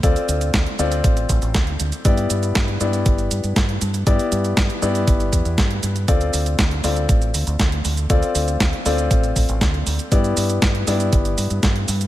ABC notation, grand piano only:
X:1
M:4/4
L:1/8
Q:1/4=119
K:Ddor
V:1 name="Grand piano"
[CFAd]3 [CFAd]4- [CFAd] | [B,EGd]3 [B,EGd]4- [B,EGd] | [B,EGd]3 [B,EGd]4- [B,EGd] | [CFAd]3 [CFAd]4- [CFAd] |
[CFAd]3 [CFAd]4- [CFAd] | [B,EGd]3 [B,EGd]4- [B,EGd] |]